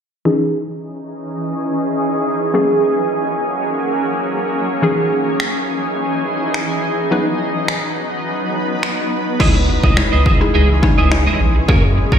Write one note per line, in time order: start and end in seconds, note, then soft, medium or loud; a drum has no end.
0.25 2.50 E3 medium
0.25 2.52 E3 medium
0.25 2.50 C#4 medium
0.25 2.52 C#4 medium
0.25 2.52 D#4 medium
0.25 2.50 D#4 medium
0.25 4.79 G#4 medium
0.25 2.51 G#4 medium
2.54 4.79 F#3 medium
2.54 4.81 F#3 medium
2.54 4.79 A#3 medium
2.54 4.81 A#3 medium
2.54 4.79 C#4 medium
2.54 7.08 C#4 medium
2.54 4.79 G#4 medium
4.82 7.07 E3 medium
4.82 7.09 E3 medium
4.82 7.07 C#4 medium
4.82 7.07 D#4 medium
4.82 9.36 D#4 medium
4.82 7.09 G#4 medium
4.82 7.08 G#4 medium
5.40 finger snap loud
6.54 finger snap loud
7.11 9.36 F#3 medium
7.11 9.38 F#3 medium
7.11 9.36 B3 medium
7.11 9.38 B3 medium
7.11 9.36 D#4 medium
7.11 9.38 B4 medium
7.11 9.36 B4 medium
7.68 finger snap loud
8.83 finger snap loud
9.40 9.71 C#2 loud
9.40 11.66 E3 medium
9.40 9.77 G#3 medium
9.40 12.19 G#3 medium
9.40 11.66 C#4 medium
9.40 9.77 D#4 medium
9.40 9.57 E4 medium
9.40 9.77 E4 medium
9.40 11.66 G#4 medium
9.40 9.55 G#4 medium
9.40 9.77 C#5 medium
9.40 9.54 D#5 medium
9.40 kick loud
9.40 crash medium
9.55 muted clean electric guitar stroke soft
9.69 muted clean electric guitar stroke soft
9.83 10.04 C#2 medium
9.83 9.96 E4 medium
9.83 9.96 G#4 medium
9.83 9.95 D#5 medium
9.83 kick medium
9.97 10.24 G#3 medium
9.97 10.24 D#4 medium
9.97 10.25 E4 medium
9.97 10.25 C#5 medium
9.97 finger snap loud
9.97 muted clean electric guitar stroke soft
10.12 10.42 C#2 medium
10.12 10.24 E4 medium
10.12 10.25 G#4 medium
10.12 10.25 D#5 medium
10.25 10.39 E4 medium
10.25 10.39 G#4 medium
10.25 10.39 D#5 medium
10.25 kick medium
10.41 10.68 G#3 medium
10.41 10.68 D#4 medium
10.41 10.68 E4 medium
10.41 10.68 G#4 medium
10.41 muted clean electric guitar stroke soft
10.54 10.85 C#2 loud
10.54 10.71 E4 medium
10.54 10.69 G#4 medium
10.54 10.68 D#5 medium
10.69 muted clean electric guitar stroke soft
10.83 11.02 G#3 medium
10.83 11.02 D#4 medium
10.83 11.02 E4 medium
10.83 11.02 C#5 medium
10.83 muted clean electric guitar stroke soft
10.83 kick medium
10.98 11.27 C#2 loud
10.98 11.10 E4 medium
10.98 11.10 G#4 medium
10.98 11.10 D#5 medium
11.11 11.48 G#3 medium
11.11 11.48 D#4 medium
11.11 11.48 E4 medium
11.11 11.48 C#5 medium
11.11 finger snap loud
11.27 11.39 E4 medium
11.27 11.39 G#4 medium
11.27 11.40 D#5 medium
11.40 11.60 A#1 medium
11.40 muted clean electric guitar stroke medium
11.55 muted clean electric guitar stroke soft
11.68 11.99 F#2 loud
11.68 12.19 C#3 medium
11.68 12.05 A#3 medium
11.68 12.19 A#3 medium
11.68 11.85 C#4 medium
11.68 12.05 F#4 medium
11.68 12.19 F#4 medium
11.68 12.06 G#4 medium
11.68 11.83 G#4 medium
11.68 11.83 A#4 medium
11.68 12.06 C#5 medium
11.68 kick loud
11.84 muted clean electric guitar stroke soft
11.97 muted clean electric guitar stroke soft
12.12 12.19 F#2 medium
12.12 12.19 C#4 medium
12.12 12.19 G#4 medium
12.12 12.19 A#4 medium
12.12 kick medium